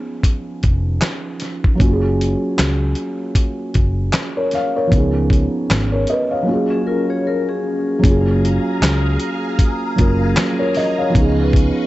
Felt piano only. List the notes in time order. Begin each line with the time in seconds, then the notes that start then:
Already playing: F3 B3 C#4 D#4 G#4
1.75 F#3 A#3
1.80 C#4 F4
1.86 F#4
1.92 G#4
4.37 A#4 C#5
4.54 C#5 F5
4.76 A#4 C#5
4.87 F3 B3
4.92 C#4 D#4
4.97 G#4
5.92 A#4 C#5
6.09 B4 D#5
6.31 C#5 F5
6.42 F#3 A#3
6.48 C#4 F4
6.53 G#4
7.99 F#3 A#3
8.04 C#4 F4
8.10 G#4
9.96 F#3 A#3 C#4 F4
10.01 A#4
10.59 A#4 C#5
10.76 D#5
10.98 C#5 F5
11.10 F3 B3
11.15 C#4 D#4
11.20 G#4